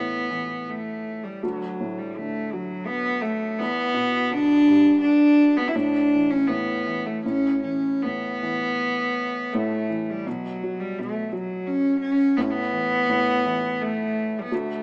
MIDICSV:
0, 0, Header, 1, 3, 480
1, 0, Start_track
1, 0, Tempo, 737101
1, 933, Time_signature, 3, 2, 24, 8
1, 1884, Tempo, 715990
1, 4284, Tempo, 767263
1, 5724, Tempo, 741656
1, 6684, Tempo, 710900
1, 9770, End_track
2, 0, Start_track
2, 0, Title_t, "Cello"
2, 0, Program_c, 0, 42
2, 0, Note_on_c, 0, 59, 74
2, 453, Note_on_c, 0, 57, 78
2, 463, Note_off_c, 0, 59, 0
2, 806, Note_on_c, 0, 55, 70
2, 815, Note_off_c, 0, 57, 0
2, 924, Note_on_c, 0, 54, 76
2, 934, Note_off_c, 0, 55, 0
2, 1292, Note_on_c, 0, 55, 74
2, 1302, Note_off_c, 0, 54, 0
2, 1416, Note_on_c, 0, 57, 83
2, 1425, Note_off_c, 0, 55, 0
2, 1646, Note_on_c, 0, 54, 80
2, 1656, Note_off_c, 0, 57, 0
2, 1868, Note_on_c, 0, 59, 96
2, 1878, Note_off_c, 0, 54, 0
2, 2098, Note_on_c, 0, 57, 85
2, 2108, Note_off_c, 0, 59, 0
2, 2351, Note_on_c, 0, 59, 99
2, 2361, Note_off_c, 0, 57, 0
2, 2843, Note_on_c, 0, 62, 106
2, 2853, Note_off_c, 0, 59, 0
2, 3303, Note_off_c, 0, 62, 0
2, 3307, Note_on_c, 0, 62, 97
2, 3679, Note_on_c, 0, 59, 84
2, 3689, Note_off_c, 0, 62, 0
2, 3754, Note_on_c, 0, 64, 67
2, 3764, Note_off_c, 0, 59, 0
2, 3805, Note_on_c, 0, 62, 90
2, 3815, Note_off_c, 0, 64, 0
2, 4172, Note_on_c, 0, 61, 82
2, 4182, Note_off_c, 0, 62, 0
2, 4285, Note_on_c, 0, 59, 80
2, 4294, Note_off_c, 0, 61, 0
2, 4653, Note_on_c, 0, 57, 67
2, 4662, Note_off_c, 0, 59, 0
2, 4768, Note_off_c, 0, 57, 0
2, 4776, Note_on_c, 0, 61, 82
2, 4996, Note_off_c, 0, 61, 0
2, 5009, Note_on_c, 0, 61, 75
2, 5254, Note_on_c, 0, 59, 86
2, 5263, Note_off_c, 0, 61, 0
2, 6209, Note_on_c, 0, 57, 81
2, 6219, Note_off_c, 0, 59, 0
2, 6551, Note_off_c, 0, 57, 0
2, 6551, Note_on_c, 0, 57, 56
2, 6585, Note_on_c, 0, 55, 74
2, 6595, Note_off_c, 0, 57, 0
2, 6701, Note_on_c, 0, 54, 74
2, 6711, Note_off_c, 0, 55, 0
2, 7053, Note_on_c, 0, 55, 79
2, 7063, Note_off_c, 0, 54, 0
2, 7179, Note_on_c, 0, 57, 79
2, 7189, Note_off_c, 0, 55, 0
2, 7403, Note_on_c, 0, 54, 75
2, 7413, Note_off_c, 0, 57, 0
2, 7639, Note_on_c, 0, 61, 88
2, 7649, Note_off_c, 0, 54, 0
2, 7859, Note_off_c, 0, 61, 0
2, 7864, Note_on_c, 0, 61, 90
2, 8108, Note_on_c, 0, 59, 79
2, 8118, Note_off_c, 0, 61, 0
2, 8138, Note_on_c, 0, 61, 65
2, 8148, Note_off_c, 0, 59, 0
2, 8204, Note_on_c, 0, 59, 95
2, 8214, Note_off_c, 0, 61, 0
2, 9081, Note_on_c, 0, 57, 82
2, 9091, Note_off_c, 0, 59, 0
2, 9471, Note_on_c, 0, 55, 66
2, 9482, Note_off_c, 0, 57, 0
2, 9505, Note_off_c, 0, 55, 0
2, 9509, Note_on_c, 0, 59, 61
2, 9583, Note_on_c, 0, 57, 77
2, 9593, Note_off_c, 0, 59, 0
2, 9770, Note_off_c, 0, 57, 0
2, 9770, End_track
3, 0, Start_track
3, 0, Title_t, "Felt piano"
3, 0, Program_c, 1, 0
3, 0, Control_c, 1, 64, 127
3, 0, Note_on_c, 1, 45, 43
3, 0, Note_on_c, 1, 52, 43
3, 189, Note_off_c, 1, 52, 0
3, 199, Note_on_c, 1, 52, 46
3, 907, Note_off_c, 1, 45, 0
3, 907, Note_off_c, 1, 52, 0
3, 932, Note_on_c, 1, 38, 58
3, 941, Control_c, 1, 64, 0
3, 1039, Control_c, 1, 64, 127
3, 1176, Note_on_c, 1, 45, 46
3, 1420, Note_on_c, 1, 50, 48
3, 1648, Note_on_c, 1, 54, 51
3, 2099, Note_off_c, 1, 45, 0
3, 2337, Note_off_c, 1, 38, 0
3, 2342, Note_off_c, 1, 50, 0
3, 2342, Note_off_c, 1, 54, 0
3, 2361, Note_on_c, 1, 40, 62
3, 2372, Control_c, 1, 64, 0
3, 2497, Control_c, 1, 64, 127
3, 2588, Note_on_c, 1, 47, 52
3, 2835, Note_on_c, 1, 50, 59
3, 3079, Note_on_c, 1, 55, 56
3, 3518, Note_off_c, 1, 47, 0
3, 3765, Note_off_c, 1, 50, 0
3, 3766, Note_off_c, 1, 40, 0
3, 3775, Note_off_c, 1, 55, 0
3, 3802, Note_on_c, 1, 45, 58
3, 3804, Control_c, 1, 64, 0
3, 3912, Control_c, 1, 64, 127
3, 4066, Note_on_c, 1, 52, 44
3, 4288, Note_off_c, 1, 45, 0
3, 4298, Note_on_c, 1, 45, 48
3, 4522, Note_off_c, 1, 52, 0
3, 4532, Note_on_c, 1, 52, 44
3, 4753, Note_off_c, 1, 45, 0
3, 4760, Note_off_c, 1, 52, 0
3, 4768, Control_c, 1, 64, 0
3, 4777, Note_on_c, 1, 45, 50
3, 4885, Control_c, 1, 64, 127
3, 5012, Note_on_c, 1, 52, 38
3, 5256, Note_off_c, 1, 45, 0
3, 5266, Note_on_c, 1, 45, 46
3, 5497, Note_off_c, 1, 52, 0
3, 5507, Note_on_c, 1, 52, 45
3, 6196, Note_off_c, 1, 45, 0
3, 6223, Note_on_c, 1, 45, 59
3, 6435, Note_off_c, 1, 52, 0
3, 6450, Note_on_c, 1, 52, 45
3, 6676, Note_off_c, 1, 45, 0
3, 6677, Note_off_c, 1, 52, 0
3, 6689, Note_on_c, 1, 47, 60
3, 6695, Control_c, 1, 64, 0
3, 6798, Control_c, 1, 64, 127
3, 6938, Note_on_c, 1, 54, 50
3, 7171, Note_off_c, 1, 47, 0
3, 7181, Note_on_c, 1, 47, 50
3, 7394, Note_off_c, 1, 54, 0
3, 7404, Note_on_c, 1, 54, 51
3, 8095, Note_off_c, 1, 47, 0
3, 8095, Note_off_c, 1, 54, 0
3, 8115, Note_on_c, 1, 45, 63
3, 8120, Control_c, 1, 64, 0
3, 8259, Control_c, 1, 64, 127
3, 8352, Note_on_c, 1, 52, 46
3, 8587, Note_off_c, 1, 45, 0
3, 8597, Note_on_c, 1, 45, 53
3, 8836, Note_off_c, 1, 52, 0
3, 8846, Note_on_c, 1, 52, 48
3, 9536, Note_off_c, 1, 45, 0
3, 9544, Note_off_c, 1, 52, 0
3, 9559, Note_on_c, 1, 38, 57
3, 9569, Control_c, 1, 64, 0
3, 9673, Control_c, 1, 64, 127
3, 9770, Note_off_c, 1, 38, 0
3, 9770, End_track
0, 0, End_of_file